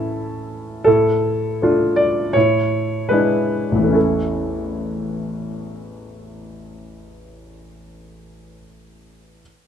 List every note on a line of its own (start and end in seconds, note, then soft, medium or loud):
0.00 0.79 A2 soft
0.00 0.80 A3 soft
0.00 0.81 C#4 soft
0.00 0.81 E4 soft
0.00 0.43 A4 soft
0.00 0.43 E5 soft
0.00 0.47 A5 medium
0.84 1.59 A2 soft
0.84 1.97 A4 medium
1.62 2.31 A3 soft
1.62 2.32 D4 soft
1.62 2.32 F4 soft
1.96 2.34 D5 medium
2.33 3.08 A2 soft
2.33 3.10 C#5 medium
3.09 3.91 G#3 soft
3.09 3.91 D4 soft
3.09 3.91 E4 soft
3.09 3.94 B4 soft
3.72 8.53 A1 soft
3.76 8.55 E2 soft
3.76 8.57 E3 soft
3.83 8.59 A3 soft
3.88 8.62 C#4 soft
3.88 8.63 E4 soft
3.94 8.65 A4 soft